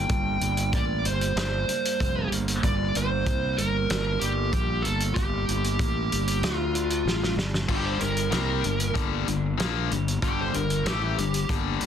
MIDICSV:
0, 0, Header, 1, 8, 480
1, 0, Start_track
1, 0, Key_signature, -2, "minor"
1, 0, Tempo, 632911
1, 84, Time_signature, 4, 2, 24, 8
1, 8995, End_track
2, 0, Start_track
2, 0, Title_t, "Lead electric guitar"
2, 0, Program_c, 0, 29
2, 0, Note_on_c, 0, 79, 103
2, 566, Note_on_c, 0, 74, 84
2, 594, Note_off_c, 0, 79, 0
2, 789, Note_off_c, 0, 74, 0
2, 804, Note_on_c, 0, 72, 77
2, 1733, Note_off_c, 0, 72, 0
2, 2005, Note_on_c, 0, 74, 122
2, 2227, Note_off_c, 0, 74, 0
2, 2253, Note_on_c, 0, 72, 104
2, 2714, Note_off_c, 0, 72, 0
2, 2717, Note_on_c, 0, 70, 96
2, 3169, Note_off_c, 0, 70, 0
2, 3182, Note_on_c, 0, 67, 86
2, 3658, Note_on_c, 0, 69, 87
2, 3687, Note_off_c, 0, 67, 0
2, 3892, Note_off_c, 0, 69, 0
2, 3896, Note_on_c, 0, 67, 91
2, 4973, Note_off_c, 0, 67, 0
2, 4973, Note_on_c, 0, 65, 91
2, 5557, Note_off_c, 0, 65, 0
2, 5837, Note_on_c, 0, 67, 96
2, 5954, Note_on_c, 0, 72, 75
2, 5955, Note_off_c, 0, 67, 0
2, 6070, Note_off_c, 0, 72, 0
2, 6073, Note_on_c, 0, 70, 76
2, 6296, Note_off_c, 0, 70, 0
2, 6305, Note_on_c, 0, 70, 81
2, 6779, Note_off_c, 0, 70, 0
2, 7761, Note_on_c, 0, 67, 96
2, 7878, Note_off_c, 0, 67, 0
2, 7893, Note_on_c, 0, 72, 87
2, 7999, Note_off_c, 0, 72, 0
2, 7999, Note_on_c, 0, 70, 87
2, 8234, Note_off_c, 0, 70, 0
2, 8245, Note_on_c, 0, 67, 88
2, 8711, Note_off_c, 0, 67, 0
2, 8995, End_track
3, 0, Start_track
3, 0, Title_t, "Clean electric guitar"
3, 0, Program_c, 1, 27
3, 0, Note_on_c, 1, 43, 79
3, 0, Note_on_c, 1, 55, 74
3, 0, Note_on_c, 1, 58, 65
3, 0, Note_on_c, 1, 62, 81
3, 77, Note_off_c, 1, 43, 0
3, 80, Note_on_c, 1, 43, 74
3, 560, Note_off_c, 1, 58, 0
3, 563, Note_on_c, 1, 58, 67
3, 799, Note_off_c, 1, 55, 0
3, 802, Note_on_c, 1, 55, 68
3, 1040, Note_off_c, 1, 62, 0
3, 1043, Note_on_c, 1, 62, 80
3, 1285, Note_off_c, 1, 58, 0
3, 1288, Note_on_c, 1, 58, 64
3, 1523, Note_off_c, 1, 55, 0
3, 1526, Note_on_c, 1, 55, 73
3, 1755, Note_off_c, 1, 58, 0
3, 1764, Note_on_c, 1, 58, 67
3, 1999, Note_off_c, 1, 43, 0
3, 2002, Note_on_c, 1, 43, 77
3, 2476, Note_off_c, 1, 58, 0
3, 2485, Note_on_c, 1, 58, 67
3, 2715, Note_off_c, 1, 55, 0
3, 2724, Note_on_c, 1, 55, 67
3, 2954, Note_off_c, 1, 62, 0
3, 2957, Note_on_c, 1, 62, 74
3, 3196, Note_off_c, 1, 58, 0
3, 3202, Note_off_c, 1, 43, 0
3, 3205, Note_on_c, 1, 58, 67
3, 3430, Note_off_c, 1, 55, 0
3, 3439, Note_on_c, 1, 55, 74
3, 3667, Note_off_c, 1, 58, 0
3, 3676, Note_on_c, 1, 58, 67
3, 3918, Note_on_c, 1, 43, 83
3, 4159, Note_off_c, 1, 62, 0
3, 4393, Note_off_c, 1, 58, 0
3, 4402, Note_on_c, 1, 58, 73
3, 4634, Note_off_c, 1, 55, 0
3, 4643, Note_on_c, 1, 55, 65
3, 4874, Note_on_c, 1, 50, 77
3, 4879, Note_off_c, 1, 43, 0
3, 4881, Note_off_c, 1, 58, 0
3, 4882, Note_off_c, 1, 55, 0
3, 5115, Note_on_c, 1, 62, 70
3, 5357, Note_off_c, 1, 50, 0
3, 5357, Note_on_c, 1, 43, 70
3, 5358, Note_off_c, 1, 62, 0
3, 5597, Note_on_c, 1, 62, 65
3, 5824, Note_off_c, 1, 43, 0
3, 5839, Note_off_c, 1, 62, 0
3, 6079, Note_on_c, 1, 55, 65
3, 6321, Note_on_c, 1, 58, 69
3, 6560, Note_on_c, 1, 67, 71
3, 6800, Note_off_c, 1, 58, 0
3, 6803, Note_on_c, 1, 58, 75
3, 7041, Note_on_c, 1, 62, 70
3, 7520, Note_off_c, 1, 67, 0
3, 7523, Note_on_c, 1, 67, 69
3, 7758, Note_on_c, 1, 43, 74
3, 8000, Note_off_c, 1, 55, 0
3, 8003, Note_on_c, 1, 55, 65
3, 8479, Note_off_c, 1, 67, 0
3, 8482, Note_on_c, 1, 67, 67
3, 8731, Note_off_c, 1, 58, 0
3, 8734, Note_on_c, 1, 58, 67
3, 8969, Note_off_c, 1, 62, 0
3, 8995, Note_off_c, 1, 43, 0
3, 8995, Note_off_c, 1, 55, 0
3, 8995, Note_off_c, 1, 58, 0
3, 8995, Note_off_c, 1, 67, 0
3, 8995, End_track
4, 0, Start_track
4, 0, Title_t, "Distorted electric guitar"
4, 0, Program_c, 2, 30
4, 5828, Note_on_c, 2, 43, 88
4, 5833, Note_on_c, 2, 50, 87
4, 5837, Note_on_c, 2, 55, 90
4, 6055, Note_off_c, 2, 43, 0
4, 6057, Note_off_c, 2, 50, 0
4, 6065, Note_on_c, 2, 43, 62
4, 6067, Note_on_c, 2, 50, 73
4, 6072, Note_off_c, 2, 55, 0
4, 6265, Note_off_c, 2, 43, 0
4, 6266, Note_off_c, 2, 50, 0
4, 6303, Note_on_c, 2, 48, 94
4, 6307, Note_on_c, 2, 55, 94
4, 6307, Note_on_c, 2, 60, 95
4, 6544, Note_off_c, 2, 48, 0
4, 6544, Note_on_c, 2, 43, 65
4, 6547, Note_off_c, 2, 55, 0
4, 6547, Note_off_c, 2, 60, 0
4, 6547, Note_on_c, 2, 50, 62
4, 6745, Note_off_c, 2, 43, 0
4, 6746, Note_off_c, 2, 50, 0
4, 6779, Note_on_c, 2, 43, 90
4, 6784, Note_on_c, 2, 50, 89
4, 6788, Note_on_c, 2, 55, 98
4, 7012, Note_off_c, 2, 43, 0
4, 7017, Note_off_c, 2, 50, 0
4, 7021, Note_on_c, 2, 43, 65
4, 7026, Note_on_c, 2, 50, 63
4, 7028, Note_off_c, 2, 55, 0
4, 7224, Note_off_c, 2, 43, 0
4, 7226, Note_off_c, 2, 50, 0
4, 7263, Note_on_c, 2, 46, 87
4, 7272, Note_on_c, 2, 53, 95
4, 7274, Note_on_c, 2, 58, 103
4, 7505, Note_off_c, 2, 46, 0
4, 7510, Note_off_c, 2, 53, 0
4, 7511, Note_off_c, 2, 58, 0
4, 7517, Note_on_c, 2, 43, 66
4, 7521, Note_on_c, 2, 50, 68
4, 7712, Note_off_c, 2, 43, 0
4, 7714, Note_off_c, 2, 50, 0
4, 7756, Note_on_c, 2, 43, 89
4, 7761, Note_on_c, 2, 55, 101
4, 7762, Note_on_c, 2, 50, 106
4, 7989, Note_off_c, 2, 43, 0
4, 7995, Note_off_c, 2, 50, 0
4, 7995, Note_off_c, 2, 55, 0
4, 7998, Note_on_c, 2, 43, 68
4, 8003, Note_on_c, 2, 50, 68
4, 8193, Note_off_c, 2, 43, 0
4, 8195, Note_off_c, 2, 50, 0
4, 8236, Note_on_c, 2, 45, 91
4, 8238, Note_on_c, 2, 52, 104
4, 8243, Note_on_c, 2, 57, 103
4, 8473, Note_off_c, 2, 45, 0
4, 8474, Note_off_c, 2, 52, 0
4, 8476, Note_off_c, 2, 57, 0
4, 8478, Note_on_c, 2, 43, 57
4, 8484, Note_on_c, 2, 50, 65
4, 8673, Note_off_c, 2, 43, 0
4, 8676, Note_off_c, 2, 50, 0
4, 8720, Note_on_c, 2, 43, 93
4, 8723, Note_on_c, 2, 50, 96
4, 8725, Note_on_c, 2, 55, 98
4, 8948, Note_off_c, 2, 43, 0
4, 8957, Note_off_c, 2, 50, 0
4, 8958, Note_off_c, 2, 55, 0
4, 8995, End_track
5, 0, Start_track
5, 0, Title_t, "Fingered electric bass"
5, 0, Program_c, 3, 33
5, 71, Note_on_c, 3, 31, 93
5, 300, Note_off_c, 3, 31, 0
5, 312, Note_on_c, 3, 31, 79
5, 541, Note_off_c, 3, 31, 0
5, 553, Note_on_c, 3, 33, 92
5, 781, Note_off_c, 3, 33, 0
5, 800, Note_on_c, 3, 31, 80
5, 1025, Note_off_c, 3, 31, 0
5, 1031, Note_on_c, 3, 31, 93
5, 1260, Note_off_c, 3, 31, 0
5, 1522, Note_on_c, 3, 29, 96
5, 1746, Note_off_c, 3, 29, 0
5, 1756, Note_on_c, 3, 31, 72
5, 1983, Note_off_c, 3, 31, 0
5, 1997, Note_on_c, 3, 31, 96
5, 2223, Note_off_c, 3, 31, 0
5, 2239, Note_on_c, 3, 31, 77
5, 2464, Note_off_c, 3, 31, 0
5, 2474, Note_on_c, 3, 36, 96
5, 2701, Note_off_c, 3, 36, 0
5, 2715, Note_on_c, 3, 31, 73
5, 2942, Note_off_c, 3, 31, 0
5, 2959, Note_on_c, 3, 31, 89
5, 3184, Note_off_c, 3, 31, 0
5, 3198, Note_on_c, 3, 31, 77
5, 3423, Note_off_c, 3, 31, 0
5, 3437, Note_on_c, 3, 34, 94
5, 3662, Note_off_c, 3, 34, 0
5, 3686, Note_on_c, 3, 31, 80
5, 3907, Note_off_c, 3, 31, 0
5, 3913, Note_on_c, 3, 31, 95
5, 4140, Note_off_c, 3, 31, 0
5, 4159, Note_on_c, 3, 31, 78
5, 4383, Note_off_c, 3, 31, 0
5, 4636, Note_on_c, 3, 31, 80
5, 4861, Note_off_c, 3, 31, 0
5, 4869, Note_on_c, 3, 38, 89
5, 5324, Note_off_c, 3, 38, 0
5, 5350, Note_on_c, 3, 33, 102
5, 5578, Note_off_c, 3, 33, 0
5, 5590, Note_on_c, 3, 31, 87
5, 5818, Note_off_c, 3, 31, 0
5, 5832, Note_on_c, 3, 31, 86
5, 6059, Note_off_c, 3, 31, 0
5, 6072, Note_on_c, 3, 31, 75
5, 6300, Note_off_c, 3, 31, 0
5, 6312, Note_on_c, 3, 36, 88
5, 6540, Note_off_c, 3, 36, 0
5, 6553, Note_on_c, 3, 31, 73
5, 6780, Note_off_c, 3, 31, 0
5, 6788, Note_on_c, 3, 31, 87
5, 7018, Note_off_c, 3, 31, 0
5, 7034, Note_on_c, 3, 31, 76
5, 7261, Note_off_c, 3, 31, 0
5, 7281, Note_on_c, 3, 34, 90
5, 7505, Note_off_c, 3, 34, 0
5, 7512, Note_on_c, 3, 31, 70
5, 7740, Note_off_c, 3, 31, 0
5, 7753, Note_on_c, 3, 31, 88
5, 7981, Note_off_c, 3, 31, 0
5, 7997, Note_on_c, 3, 31, 83
5, 8223, Note_off_c, 3, 31, 0
5, 8233, Note_on_c, 3, 33, 96
5, 8461, Note_off_c, 3, 33, 0
5, 8483, Note_on_c, 3, 31, 75
5, 8707, Note_off_c, 3, 31, 0
5, 8717, Note_on_c, 3, 31, 96
5, 8944, Note_off_c, 3, 31, 0
5, 8995, End_track
6, 0, Start_track
6, 0, Title_t, "Muted distorted electric guitar strokes"
6, 8957, Note_on_c, 9, 29, 56
6, 8995, Note_off_c, 9, 29, 0
6, 8995, End_track
7, 0, Start_track
7, 0, Title_t, "Muted fingered electric bass strokes"
7, 1278, Note_on_c, 9, 29, 40
7, 1354, Note_off_c, 9, 29, 0
7, 8965, Note_on_c, 9, 29, 42
7, 8995, Note_off_c, 9, 29, 0
7, 8995, End_track
8, 0, Start_track
8, 0, Title_t, "Drums"
8, 70, Note_on_c, 9, 42, 59
8, 74, Note_on_c, 9, 36, 98
8, 146, Note_off_c, 9, 42, 0
8, 150, Note_off_c, 9, 36, 0
8, 313, Note_on_c, 9, 42, 58
8, 389, Note_off_c, 9, 42, 0
8, 433, Note_on_c, 9, 42, 63
8, 509, Note_off_c, 9, 42, 0
8, 553, Note_on_c, 9, 36, 108
8, 553, Note_on_c, 9, 42, 64
8, 629, Note_off_c, 9, 36, 0
8, 629, Note_off_c, 9, 42, 0
8, 797, Note_on_c, 9, 42, 69
8, 873, Note_off_c, 9, 42, 0
8, 919, Note_on_c, 9, 42, 71
8, 995, Note_off_c, 9, 42, 0
8, 1037, Note_on_c, 9, 42, 74
8, 1043, Note_on_c, 9, 38, 116
8, 1113, Note_off_c, 9, 42, 0
8, 1119, Note_off_c, 9, 38, 0
8, 1279, Note_on_c, 9, 42, 66
8, 1355, Note_off_c, 9, 42, 0
8, 1405, Note_on_c, 9, 42, 77
8, 1481, Note_off_c, 9, 42, 0
8, 1520, Note_on_c, 9, 36, 100
8, 1526, Note_on_c, 9, 42, 74
8, 1596, Note_off_c, 9, 36, 0
8, 1602, Note_off_c, 9, 42, 0
8, 1760, Note_on_c, 9, 42, 72
8, 1836, Note_off_c, 9, 42, 0
8, 1880, Note_on_c, 9, 42, 76
8, 1956, Note_off_c, 9, 42, 0
8, 1997, Note_on_c, 9, 36, 97
8, 1999, Note_on_c, 9, 42, 66
8, 2073, Note_off_c, 9, 36, 0
8, 2075, Note_off_c, 9, 42, 0
8, 2238, Note_on_c, 9, 42, 66
8, 2314, Note_off_c, 9, 42, 0
8, 2476, Note_on_c, 9, 36, 101
8, 2477, Note_on_c, 9, 42, 65
8, 2552, Note_off_c, 9, 36, 0
8, 2552, Note_off_c, 9, 42, 0
8, 2717, Note_on_c, 9, 42, 69
8, 2793, Note_off_c, 9, 42, 0
8, 2956, Note_on_c, 9, 42, 63
8, 2962, Note_on_c, 9, 38, 119
8, 3032, Note_off_c, 9, 42, 0
8, 3038, Note_off_c, 9, 38, 0
8, 3195, Note_on_c, 9, 42, 64
8, 3271, Note_off_c, 9, 42, 0
8, 3434, Note_on_c, 9, 36, 102
8, 3436, Note_on_c, 9, 42, 64
8, 3510, Note_off_c, 9, 36, 0
8, 3512, Note_off_c, 9, 42, 0
8, 3676, Note_on_c, 9, 42, 62
8, 3752, Note_off_c, 9, 42, 0
8, 3795, Note_on_c, 9, 42, 69
8, 3870, Note_off_c, 9, 42, 0
8, 3915, Note_on_c, 9, 36, 99
8, 3920, Note_on_c, 9, 42, 57
8, 3991, Note_off_c, 9, 36, 0
8, 3996, Note_off_c, 9, 42, 0
8, 4160, Note_on_c, 9, 42, 62
8, 4236, Note_off_c, 9, 42, 0
8, 4280, Note_on_c, 9, 42, 63
8, 4356, Note_off_c, 9, 42, 0
8, 4394, Note_on_c, 9, 36, 105
8, 4401, Note_on_c, 9, 42, 63
8, 4470, Note_off_c, 9, 36, 0
8, 4477, Note_off_c, 9, 42, 0
8, 4642, Note_on_c, 9, 42, 67
8, 4718, Note_off_c, 9, 42, 0
8, 4759, Note_on_c, 9, 42, 66
8, 4835, Note_off_c, 9, 42, 0
8, 4876, Note_on_c, 9, 42, 72
8, 4882, Note_on_c, 9, 38, 114
8, 4952, Note_off_c, 9, 42, 0
8, 4958, Note_off_c, 9, 38, 0
8, 5119, Note_on_c, 9, 42, 60
8, 5195, Note_off_c, 9, 42, 0
8, 5235, Note_on_c, 9, 42, 70
8, 5311, Note_off_c, 9, 42, 0
8, 5366, Note_on_c, 9, 38, 61
8, 5442, Note_off_c, 9, 38, 0
8, 5487, Note_on_c, 9, 38, 65
8, 5563, Note_off_c, 9, 38, 0
8, 5602, Note_on_c, 9, 38, 88
8, 5678, Note_off_c, 9, 38, 0
8, 5721, Note_on_c, 9, 38, 90
8, 5797, Note_off_c, 9, 38, 0
8, 5829, Note_on_c, 9, 36, 95
8, 5831, Note_on_c, 9, 49, 98
8, 5905, Note_off_c, 9, 36, 0
8, 5906, Note_off_c, 9, 49, 0
8, 6071, Note_on_c, 9, 42, 59
8, 6147, Note_off_c, 9, 42, 0
8, 6193, Note_on_c, 9, 42, 65
8, 6269, Note_off_c, 9, 42, 0
8, 6308, Note_on_c, 9, 42, 63
8, 6314, Note_on_c, 9, 38, 97
8, 6384, Note_off_c, 9, 42, 0
8, 6390, Note_off_c, 9, 38, 0
8, 6552, Note_on_c, 9, 42, 64
8, 6628, Note_off_c, 9, 42, 0
8, 6672, Note_on_c, 9, 42, 67
8, 6748, Note_off_c, 9, 42, 0
8, 6791, Note_on_c, 9, 36, 109
8, 6797, Note_on_c, 9, 42, 67
8, 6867, Note_off_c, 9, 36, 0
8, 6873, Note_off_c, 9, 42, 0
8, 7036, Note_on_c, 9, 42, 65
8, 7112, Note_off_c, 9, 42, 0
8, 7277, Note_on_c, 9, 42, 67
8, 7283, Note_on_c, 9, 38, 107
8, 7353, Note_off_c, 9, 42, 0
8, 7359, Note_off_c, 9, 38, 0
8, 7519, Note_on_c, 9, 42, 65
8, 7595, Note_off_c, 9, 42, 0
8, 7644, Note_on_c, 9, 42, 66
8, 7720, Note_off_c, 9, 42, 0
8, 7754, Note_on_c, 9, 36, 96
8, 7759, Note_on_c, 9, 42, 61
8, 7829, Note_off_c, 9, 36, 0
8, 7835, Note_off_c, 9, 42, 0
8, 7995, Note_on_c, 9, 42, 58
8, 8071, Note_off_c, 9, 42, 0
8, 8115, Note_on_c, 9, 42, 63
8, 8191, Note_off_c, 9, 42, 0
8, 8235, Note_on_c, 9, 42, 67
8, 8241, Note_on_c, 9, 38, 108
8, 8311, Note_off_c, 9, 42, 0
8, 8317, Note_off_c, 9, 38, 0
8, 8482, Note_on_c, 9, 42, 64
8, 8558, Note_off_c, 9, 42, 0
8, 8599, Note_on_c, 9, 42, 66
8, 8675, Note_off_c, 9, 42, 0
8, 8716, Note_on_c, 9, 36, 114
8, 8721, Note_on_c, 9, 42, 66
8, 8792, Note_off_c, 9, 36, 0
8, 8797, Note_off_c, 9, 42, 0
8, 8954, Note_on_c, 9, 42, 68
8, 8995, Note_off_c, 9, 42, 0
8, 8995, End_track
0, 0, End_of_file